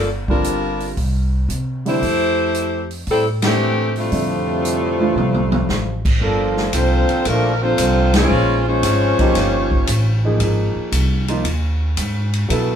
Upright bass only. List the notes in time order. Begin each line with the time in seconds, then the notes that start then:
Already playing: G1
0.97 C2
1.49 C3
2.02 F2
3.07 A2
4.12 F2
5.15 C2
5.67 A1
6.21 G1
6.73 C2
7.09 muted upright bass stroke
7.26 A#1
7.78 C2
8.30 A#1
8.83 G#1
9.19 muted upright bass stroke
9.35 G1
9.87 A1
10.40 G#1
10.75 muted upright bass stroke
10.92 C2
11.45 D#2
11.97 G#2
12.50 B2